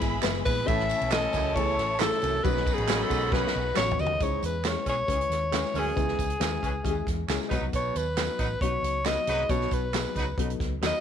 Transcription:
Already playing: upright piano E3 G#3 B3 E4 B4, horn section G#3 E4 B4, violin section G#4 E5 B5
0.01 fingered electric bass G#1, kick, snare, ride, tambourine
0.22 fingered electric bass F#1, upright piano E3 G#3 B3 E4 B4, snare, clap, ride, tambourine
0.45 fingered electric bass A#1, baritone saxophone E2, alto saxophone B4, kick, open hi-hat, ride, tambourine
0.66 fingered electric bass A1, baritone saxophone A2, upright piano E3 A3 C#4 E4 A4, horn section E3 C#4 A4, violin section E4 A5, alto saxophone E5, kick, hi-hat pedal, ride, tambourine
0.70 violin section C#5
0.79 snare
0.89 ride, tambourine
1.01 fingered electric bass B1, ride
1.11 upright piano E3 A3 C#4 E4 A4, alto saxophone D#5, snare, clap, ride, tambourine
1.33 fingered electric bass C#2, baritone saxophone F#2, kick, ride, tambourine
1.55 baritone saxophone E2, upright piano E3 A3 C#4 E4 A4, alto saxophone C#5, kick, ride
1.79 fingered electric bass A1, snare, ride
1.99 baritone saxophone G#2, upright piano E3 A3 C#4 E4 G#4, alto saxophone A4, snare, clap, ride, tambourine
2.06 upright piano A4
2.13 snare
2.22 fingered electric bass C2, baritone saxophone F#2, ride, tambourine
2.43 fingered electric bass B1, baritone saxophone D#2, horn section D#3 C#4 G#4, upright piano F#3 B3 C#4 D#4 F#4, violin section F#4 D#5 B5, alto saxophone B4, kick, ride, tambourine
2.56 snare
2.67 kick, ride, tambourine
2.74 fingered electric bass A1, alto saxophone G#4, ride
2.87 upright piano F#3 B3 C#4 D#4 F#4, snare, clap, ride, tambourine
3.03 alto saxophone A4
3.10 fingered electric bass B1, baritone saxophone G#2, kick, ride, tambourine
3.30 baritone saxophone F#2, upright piano F#3 B3 C#4 D#4 F#4, alto saxophone B4, kick, snare
3.47 snare
3.55 fingered electric bass B1, tambourine
3.74 fingered electric bass A1, upright piano F#3 B3 C#4 D#4 F#4, alto saxophone C#5, snare, clap, tambourine
3.91 floor tom
3.98 fingered electric bass D2, baritone saxophone D#2, alto saxophone D#5, tambourine
4.06 floor tom
4.20 fingered electric bass C#2, baritone saxophone G#2, upright piano G#3 C#4 E4 G#4, alto saxophone C#5, kick, closed hi-hat, tambourine
4.42 fingered electric bass E2, alto saxophone B4, closed hi-hat, tambourine
4.64 upright piano G#3 C#4 E4 G4, alto saxophone C#5, snare, clap, closed hi-hat, tambourine
4.70 upright piano G#4
4.86 fingered electric bass B1, horn section E3 C#4 G#4, alto saxophone C#5, kick, closed hi-hat, tambourine
5.07 fingered electric bass C#2, horn section E3 C#4 G#4, upright piano G#3 C#4 D#4 B4, kick, closed hi-hat, tambourine
5.13 upright piano E4
5.21 closed hi-hat
5.29 fingered electric bass D#2, snare, closed hi-hat
5.51 horn section E3 C#4 G#4, upright piano G#3 C#4 E4 B4, snare, clap, closed hi-hat, tambourine
5.65 snare
5.74 fingered electric bass D2, baritone saxophone F#2, horn section E3 C#4 G#4, open hi-hat, tambourine
5.79 alto saxophone G#4
5.95 fingered electric bass C#2, baritone saxophone E2, upright piano G#3 C#4 E4 B4, kick, closed hi-hat, tambourine
6.08 snare
6.19 fingered electric bass C#2, kick, closed hi-hat, tambourine
6.30 closed hi-hat
6.39 fingered electric bass D#2, upright piano G#3 C#4 E4 B4, snare, clap, closed hi-hat, tambourine
6.63 fingered electric bass C#2, horn section E3 C#4 G#4, kick, closed hi-hat, tambourine
6.83 fingered electric bass D#2, horn section E3 C#4 G#4, upright piano G#3 C#4 E4 G4, kick, closed hi-hat, tambourine
6.90 upright piano G#4
7.07 fingered electric bass E2, kick, snare, closed hi-hat
7.28 fingered electric bass C#2, horn section E3 C#4 G#4, upright piano G#3 C#4 E4 G#4, snare, clap, closed hi-hat, tambourine
7.41 snare
7.49 fingered electric bass B1, horn section F#3 D#4 B4, upright piano F#3 B3 D#4 F#4, kick, closed hi-hat, tambourine
7.61 fingered electric bass C2
7.73 fingered electric bass B1, baritone saxophone B2, alto saxophone C#5, kick, closed hi-hat, tambourine
7.95 fingered electric bass D#2, alto saxophone B4, closed hi-hat, tambourine
8.17 upright piano F#3 B3 D#4 F#4, snare, clap, closed hi-hat, tambourine
8.39 fingered electric bass A1, horn section F#3 D#4 B4, kick, closed hi-hat, tambourine
8.61 fingered electric bass B1, upright piano F#3 B3 D#4 F#4, horn section F#3 D#4 B4, alto saxophone C#5, kick, closed hi-hat
8.82 fingered electric bass C#2, closed hi-hat, tambourine
9.05 upright piano F#3 B3 D#4 F#4, horn section F#3 D#4 B4, alto saxophone D#5, snare, clap, closed hi-hat, tambourine
9.27 fingered electric bass C2, baritone saxophone G#2, horn section F#3 D#4 B4, closed hi-hat, tambourine
9.49 fingered electric bass B1, baritone saxophone B2, upright piano F#3 B3 C#4 F#4, alto saxophone C#5, kick, closed hi-hat, tambourine
9.54 upright piano D#4
9.61 snare
9.71 fingered electric bass B1, alto saxophone B4, kick, closed hi-hat, tambourine
9.92 upright piano F#3 B3 D#4 G#4, snare, clap, closed hi-hat, tambourine
10.15 fingered electric bass C#2, horn section F#3 D#4 B4, kick, closed hi-hat, tambourine
10.37 fingered electric bass B1, upright piano F#3 B3 D#4 A4, horn section F#3 D#4 B4, kick, closed hi-hat
10.50 closed hi-hat
10.60 fingered electric bass C#2, kick, snare, closed hi-hat
10.81 fingered electric bass D#2, upright piano F#3 B3 D#4 F#4, horn section F#3 D#4 B4, snare, clap, closed hi-hat, tambourine
10.86 alto saxophone D#5

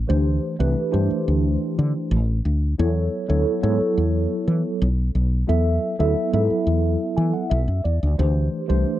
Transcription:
0.08 fretless electric bass D2, tine electric piano E3 A3 D4 G4 C5
0.59 fretless electric bass C2, tine electric piano E3 A3 D4 G4 B4
0.92 fretless electric bass G2, tine electric piano E3 A3 D4 G4 C5
1.11 muted fretless electric bass stroke
1.28 fretless electric bass D2
1.79 fretless electric bass D3
2.11 fretless electric bass A1
2.45 fretless electric bass D2
2.78 fretless electric bass E2, tine electric piano F#3 B3 E4 A4 C#5
3.28 fretless electric bass D2, tine electric piano F#3 B3 E4 A4 C#5
3.62 fretless electric bass G#2, tine electric piano F#3 B3 E4 A4 C#5
3.80 muted fretless electric bass stroke
3.98 fretless electric bass E2
4.48 fretless electric bass E3
4.82 fretless electric bass B1
5.15 fretless electric bass B1
5.47 fretless electric bass E2, tine electric piano F#3 B3 E4 A4 E5
5.98 fretless electric bass D2, tine electric piano F#3 B3 E4 A4 E5
6.32 fretless electric bass G#2, tine electric piano F#3 B3 E4 A4 E5
6.50 muted fretless electric bass stroke
6.67 fretless electric bass E2
7.17 fretless electric bass E3, tine electric piano G#5
7.33 tine electric piano F#5
7.50 fretless electric bass B1, tine electric piano E5
7.68 fretless electric bass F#2
7.84 fretless electric bass E2, tine electric piano D5
8.03 fretless electric bass D2
8.18 fretless electric bass D2, tine electric piano E3 A3 D4 G4 C5
8.68 fretless electric bass C2, tine electric piano E3 A3 D4 G4 C5

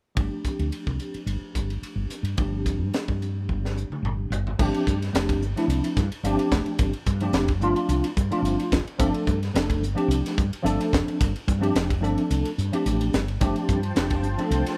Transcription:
0.15 fretless electric bass G1, tine electric piano F3 A3 C4 D4 G4, kick, ride
0.44 muted fretless electric bass stroke, kick, hi-hat pedal, ride
0.59 fretless electric bass D2, ride
0.72 ride
0.87 fretless electric bass C2, kick
1.00 hi-hat pedal, ride
1.14 muted fretless electric bass stroke, ride
1.26 fretless electric bass G1, ride
1.41 muted fretless electric bass stroke
1.55 fretless electric bass G1, kick, hi-hat pedal, ride
1.70 ride
1.82 muted fretless electric bass stroke, ride
1.96 fretless electric bass G1
2.10 hi-hat pedal, ride
2.23 fretless electric bass G2, ride
2.36 fretless electric bass G1, tine electric piano F3 A3 C4 D4, kick, ride
2.40 tine electric piano G4
2.66 kick, hi-hat pedal, ride
2.79 fretless electric bass G2
2.94 snare, ride
3.08 fretless electric bass G2, kick
3.22 hi-hat pedal, ride
3.49 fretless electric bass G1, kick
3.65 snare
3.77 hi-hat pedal
3.90 muted fretless electric bass stroke, mid tom
4.03 fretless electric bass G1, mid tom
4.30 fretless electric bass G1, floor tom, hi-hat pedal
4.47 floor tom
4.59 fretless electric bass G1, tine electric piano F3 A3 C4 D4 G4, kick, crash
4.74 ride
4.87 fretless electric bass G2, kick, hi-hat pedal
5.02 snare, ride
5.13 fretless electric bass F1, tine electric piano F3 A3 C4 D4 G4, snare, hi-hat pedal, ride
5.29 kick, ride
5.41 fretless electric bass G1, hi-hat pedal
5.56 tine electric piano F3 A3 C4 D4 E4, snare, ride
5.68 fretless electric bass C2, hi-hat pedal, ride
5.84 ride
5.97 fretless electric bass G2, kick, snare, hi-hat pedal
6.11 muted fretless electric bass stroke, ride
6.23 fretless electric bass G1, tine electric piano F3 A3 C4 D4 G4, hi-hat pedal, ride
6.39 ride
6.51 fretless electric bass F1, kick, snare, hi-hat pedal
6.66 ride
6.79 fretless electric bass G1, kick, hi-hat pedal, ride
6.93 ride
7.06 fretless electric bass G2, kick, hi-hat pedal
7.20 tine electric piano F3 A3 C4 D4 G4, ride
7.33 fretless electric bass F1, snare, hi-hat pedal, ride
7.48 kick, ride
7.61 fretless electric bass G1, tine electric piano F3 A3 C4 D4 F4, hi-hat pedal
7.76 ride
7.89 fretless electric bass C2, hi-hat pedal, ride
8.04 ride
8.17 fretless electric bass G2, kick, hi-hat pedal
8.31 tine electric piano F3 A3 C4 D4 F4, muted fretless electric bass stroke, ride
8.42 fretless electric bass G1, hi-hat pedal, ride
8.60 ride
8.72 fretless electric bass F1, kick, snare, hi-hat pedal
8.85 muted fretless electric bass stroke, ride
8.98 fretless electric bass G1, tine electric piano F3 A3 C4 D4 A4, kick, hi-hat pedal, ride
9.14 ride
9.27 fretless electric bass G2, kick, hi-hat pedal
9.43 snare, ride
9.54 fretless electric bass F1, tine electric piano F3 A3 C4 D4 A4, snare, hi-hat pedal, ride
9.70 kick, ride
9.82 fretless electric bass G1, hi-hat pedal
9.95 tine electric piano F3 A3 C4 D4 G4, ride
10.08 fretless electric bass C2, hi-hat pedal, ride
10.26 snare, ride
10.38 fretless electric bass G2, kick, hi-hat pedal
10.52 muted fretless electric bass stroke, ride
10.63 fretless electric bass G1, tine electric piano F3 A3 C4 D4 A4, hi-hat pedal, ride
10.80 ride
10.93 fretless electric bass F1, kick, snare, hi-hat pedal
11.07 muted fretless electric bass stroke, ride
11.21 fretless electric bass G1, kick, hi-hat pedal, ride
11.36 ride
11.48 fretless electric bass G2, kick, hi-hat pedal
11.60 tine electric piano F3 A3 C4 D4 G4, ride
11.75 fretless electric bass F1, snare, hi-hat pedal, ride
11.90 kick, ride
12.01 fretless electric bass G1, tine electric piano F3 A3 C4 D4 A4, hi-hat pedal
12.18 ride
12.30 fretless electric bass C2, hi-hat pedal, ride
12.45 ride
12.58 fretless electric bass G2, hi-hat pedal
12.72 tine electric piano F3 A3 C4 D4 G4, muted fretless electric bass stroke, ride
12.86 fretless electric bass A1, hi-hat pedal, ride
13.01 ride
13.13 fretless electric bass G1, snare, hi-hat pedal
13.28 ride
13.40 fretless electric bass G1, tine electric piano F3 A3 C4 D4 G4, analog synth pad F3 C5 G5 A5, kick, hi-hat pedal, ride
13.56 ride
13.69 fretless electric bass G2, kick, hi-hat pedal
13.83 ride
13.95 fretless electric bass F1, tine electric piano F3 A3 C4 D4 G4, snare, hi-hat pedal, ride
14.10 kick, ride
14.23 fretless electric bass G1, hi-hat pedal
14.38 tine electric piano F3 A3 C4 D4 A4, ride
14.51 fretless electric bass C2, hi-hat pedal, ride
14.66 snare, ride

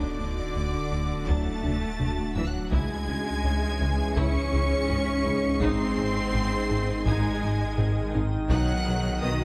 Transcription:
Already playing: sub bass D1, cello section D3, ambient pad A3 D4 F#4 F#5, viola section D4 F#4, violin section D5 D6
0.19 double bass section D2, analog synth bass D2, synth pluck D4, viola section D4
0.55 double bass section D2, analog synth bass D2, viola section A3, synth pluck D4
0.91 double bass section D2, analog synth bass D2, viola section D4, synth pluck D4
1.26 double bass section D2, analog synth bass D2, trombone section A2 F#3, synth pluck D3, french horn section F#3 D4, cello section A3, viola section D4, violin section A5 A6, taiko
1.63 double bass section D2, analog synth bass D2, synth pluck D4, viola section D4, taiko mid
2.00 analog synth bass D2, double bass section D2, viola section A3, synth pluck D4, taiko mid
2.36 double bass section D2, analog synth bass D2, cello section E3, synth pluck F#3, viola section D4, violin section E5 E6, taiko low
2.47 cello section F#3, violin section F#5 F#6
2.70 sub bass C#2, double bass section C#2, analog synth bass C#2, trombone section G#2 E3, synth pluck C#3, ambient pad G#3 C#4 G#4 E5, cello section G#3, french horn section G#3 C#4, viola section E4 G#4, violin section G#5 G#6, taiko
3.07 double bass section C#2, analog synth bass C#2, synth pluck C#4, viola section E4
3.44 analog synth bass C#2, double bass section C#2, viola section C#4, synth pluck C#4
3.81 double bass section C#2, analog synth bass C#2, synth pluck C#4, viola section E4
4.15 analog synth bass C#2, double bass section C#2, synth pluck C#3, cello section C#4, viola section E4, violin section C#6 C#7, taiko
4.53 double bass section C#2, analog synth bass C#2, synth pluck C#4, viola section E4
4.89 analog synth bass C#2, double bass section C#2, viola section C#4, synth pluck C#4, taiko low-mid
5.24 analog synth bass C#2, double bass section C#2, synth pluck E3, viola section E4
5.60 sub bass G#1, double bass section G#1, analog synth bass G#2, trombone section D#3, synth pluck G#3, cello section C4, viola section D#4, french horn section D#4, ambient pad D#4 D#5, violin section C6 C7, taiko
5.97 double bass section G#1, analog synth bass G#2, viola section D#4, synth pluck G#4
6.33 double bass section G#1, analog synth bass G#2, viola section C4, synth pluck G#4
6.69 double bass section G#1, analog synth bass G#2, viola section D#4, synth pluck G#4
7.05 double bass section G#1, analog synth bass G#2, cello section G#3, synth pluck G#3, viola section D#4, violin section G#5 G#6, taiko
7.42 double bass section G#1, analog synth bass G#2, viola section D#4, synth pluck G#4
7.78 double bass section G#1, analog synth bass G#2, viola section C4, synth pluck G#4, taiko low-mid
8.14 double bass section G#1, analog synth bass G#2, synth pluck C4, viola section D#4
8.49 double bass section B1, sub bass B1, trombone section B2, analog synth bass B2, cello section F#3, french horn section F#3, ambient pad F#3 B4, synth pluck B3, viola section D#4 F#4, violin section F#5 F#6, taiko
8.86 double bass section B1, analog synth bass B2, viola section D#4, synth pluck B4
9.22 double bass section B1, analog synth bass B2, cello section D#3, viola section B3, synth pluck B4, violin section D#5 D#6

